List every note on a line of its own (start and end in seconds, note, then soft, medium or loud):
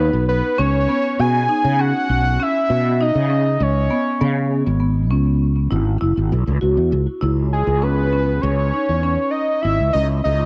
0.00 0.38 D#4 medium
0.00 0.24 B4 loud
0.13 0.40 B1 medium
0.29 0.60 B4 medium
0.58 0.86 C#2 medium
0.58 0.78 C#4 medium
0.58 1.21 C#5 loud
0.89 1.28 B3 medium
1.19 1.46 B2 medium
1.19 1.82 G#5 medium
1.49 1.69 D#4 medium
1.64 1.91 C#3 medium
1.79 2.19 C#4 medium
1.79 2.44 F#5 loud
2.09 2.36 B1 medium
2.40 2.79 C#4 medium
2.40 3.03 E5 loud
2.70 3.11 B2 medium
3.01 3.20 D#4 medium
3.01 3.64 D#5 medium
3.15 3.56 C#3 medium
3.30 3.70 C#4 medium
3.60 3.87 C#2 medium
3.60 4.52 C#5 medium
3.90 4.10 B3 medium
4.21 4.62 C#3 medium
4.21 4.60 B3 medium
4.67 5.11 G#1 medium
4.80 5.00 B3 medium
5.11 5.67 C#2 medium
5.11 5.50 C#4 medium
5.71 5.99 G#1 medium
5.71 5.91 E4 medium
6.01 6.15 F#1 medium
6.01 6.41 E4 medium
6.17 6.30 G#1 medium
6.32 6.45 B1 medium
6.47 6.61 C#2 medium
6.61 6.76 C#2 medium
6.61 7.01 F#4 medium
6.77 6.91 E2 medium
6.92 7.06 C#2 medium
7.21 7.63 C#2 medium
7.21 7.61 E4 medium
7.53 7.84 G#4 medium
7.67 8.39 C#2 medium
7.82 8.02 C#4 medium
7.82 8.43 B4 medium
8.13 8.53 C#4 medium
8.41 8.70 C#2 loud
8.41 9.32 C#5 loud
8.74 8.93 D#4 medium
8.89 9.16 E2 medium
9.03 9.43 C#4 medium
9.31 9.63 D#5 medium
9.61 9.78 G#1 medium
9.61 9.83 E4 medium
9.61 9.93 E5 loud
9.80 9.93 C#2 medium
9.93 10.21 C#2 medium
9.93 10.33 C#4 medium
9.93 10.07 D#5 medium
10.24 10.46 C#2 medium
10.24 10.46 D#5 medium